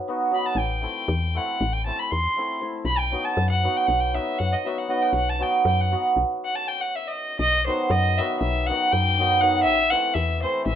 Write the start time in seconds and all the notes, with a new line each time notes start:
0.08 F#3 B3 D#4 F#4
0.31 F#3 B3 D#4 F#4 B5
0.46 A5
0.55 A1 G5
0.81 A3 C4 E4 A4
1.08 E2
1.35 A3 C4 E4 A4 F#5
1.61 A1
1.73 G5
1.86 A3 C4 E4 A4 A5
1.99 B5
2.11 E2 C6
2.37 A3 C4 E4 A4
2.61 A3 C4 E4 A4
2.85 B1 B5
2.98 G5
3.11 F#3 B3 D#4 F#4
3.25 A5
3.37 F#2
3.50 F#5
3.63 F#3 B3 D#4 F#4
3.76 G5
3.87 B1 F#5
4.00 G5
4.14 F#3 B3 D#4 F#4 E5
4.39 F#2 F#5
4.53 D#5
4.64 F#3 B3 D#4 F#4 E5
4.79 F#5
4.88 F#3 B3 D#4 F#4 D#5
5.02 G5
5.13 B1 F#5
5.29 A5
5.39 F#3 B3 D#4 F#4 G5
5.65 F#2 G5
5.81 F#5
5.91 F#3 B3 D#4 F#4
6.16 B1
6.45 F#5
6.55 A5
6.68 G5
6.81 F#5
6.95 E5
7.08 D#5
7.39 B1 D#5
7.66 D#3 F#3 B3 D#4 F#4 C5
7.90 F#2 D#5
8.18 D#3 F#3 B3 D#4 F#4 E5
8.40 B1 E5
8.67 D#3 F#3 B3 D#4 F#5
8.71 F#4
8.93 F#2 G5
9.18 D#3 F#3 B3 D#4 F#4
9.41 D#3 F#3 B3 D#4 F#4 F#5
9.63 A1 E5
9.90 E3 A3 C4 E4 A4 F#5
10.14 E2 E5
10.42 E3 A3 C4 E4 A4 C5
10.66 A1 E5